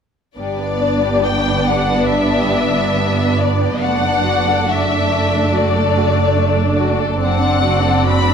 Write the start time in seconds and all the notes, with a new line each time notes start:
0.37 G1 G2 G3 B3 D4 D5
0.59 B3
0.81 D4
1.04 G4
1.24 D4 G5
1.47 B3
1.66 G3 F#5
1.89 B3
2.11 D4 E5
2.34 G4
2.54 D4
2.75 B3
2.97 G3
3.19 B3
3.40 D4 D5
3.61 G4
3.82 F#1 F#2 A3 D4 D5 F#5
4.03 D4
4.25 F#4
4.47 A4
4.65 A3 F#4 E5
4.87 D4
5.08 A3
5.30 D4
5.52 F#4 D5
5.74 A4
5.95 F#4
6.15 D4
6.36 A3
6.57 D4
6.79 F#4
7.00 A4
7.19 F#1 F#2 C4 D5
7.24 C4 D4 F#5
7.41 D4
7.62 F#4
7.84 A4
8.03 F#4
8.08 B5
8.24 D4